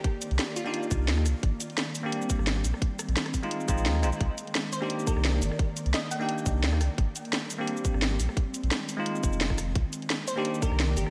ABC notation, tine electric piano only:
X:1
M:4/4
L:1/16
Q:"Swing 16ths" 1/4=173
K:Cm
V:1 name="Tine electric piano"
z6 z [B,DEG]4- [B,DEG] z [B,DEG] z2 | z6 z [B,CDG]4- [B,CDG] z [B,CDG] z2 | z6 z [A,CEF]3 [A,CEF]4 [A,CEF] z | z6 z [B,DEG]4- [B,DEG] z [B,DEG] z2 |
z6 z [B,DEG]4- [B,DEG] z [B,DEG] z2 | z6 z [B,CDG]4- [B,CDG] z [B,CDG] z2 | z6 z [A,CEF]4- [A,CEF] z [A,CEF] z2 | z6 z [B,DEG]4- [B,DEG] z [B,DEG] z2 |]